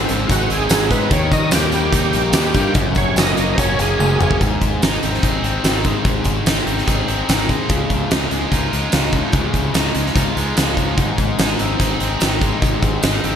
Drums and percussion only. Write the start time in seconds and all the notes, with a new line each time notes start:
0.09 closed hi-hat, tambourine
0.29 kick, closed hi-hat, tambourine
0.50 closed hi-hat
0.69 snare, closed hi-hat, tambourine
0.91 kick, closed hi-hat, tambourine
1.11 kick, closed hi-hat
1.32 kick, closed hi-hat, tambourine
1.51 snare, closed hi-hat, tambourine
1.72 closed hi-hat, tambourine
1.93 kick, closed hi-hat, tambourine
2.13 closed hi-hat
2.33 snare, closed hi-hat, tambourine
2.34 tambourine
2.54 kick, closed hi-hat, tambourine
2.74 kick, closed hi-hat
2.95 kick, closed hi-hat, tambourine
3.16 snare, closed hi-hat, tambourine
3.37 closed hi-hat, tambourine
3.58 kick, closed hi-hat, tambourine
3.79 closed hi-hat, tambourine
4.00 high tom, tambourine
4.21 mid tom, tambourine
4.31 kick
4.41 kick, closed hi-hat
4.61 kick, closed hi-hat
4.82 snare, closed hi-hat, tambourine
5.03 closed hi-hat
5.14 snare
5.23 kick, closed hi-hat
5.44 closed hi-hat
5.64 snare, closed hi-hat, tambourine
5.84 kick, closed hi-hat
6.05 kick, closed hi-hat
6.24 kick, closed hi-hat
6.46 snare, closed hi-hat, tambourine
6.67 closed hi-hat
6.78 snare
6.87 kick, closed hi-hat
7.08 closed hi-hat
7.29 snare, closed hi-hat, tambourine
7.49 kick, closed hi-hat
7.69 kick, closed hi-hat
7.90 kick, closed hi-hat
8.11 snare, closed hi-hat, tambourine
8.31 closed hi-hat
8.52 kick, closed hi-hat
8.73 closed hi-hat
8.92 snare, closed hi-hat, tambourine
9.13 kick, closed hi-hat
9.32 kick, closed hi-hat
9.54 kick, closed hi-hat
9.74 snare, closed hi-hat, tambourine
9.95 closed hi-hat
10.06 snare
10.16 kick, closed hi-hat
10.37 closed hi-hat
10.57 snare, closed hi-hat, tambourine
10.77 kick, closed hi-hat
10.98 kick, closed hi-hat
11.18 kick, closed hi-hat
11.39 snare, closed hi-hat, tambourine
11.59 closed hi-hat
11.80 kick, closed hi-hat
12.00 closed hi-hat
12.20 snare, closed hi-hat, tambourine
12.41 kick, closed hi-hat
12.62 kick, closed hi-hat
12.82 kick, closed hi-hat
13.02 snare, closed hi-hat, tambourine
13.24 closed hi-hat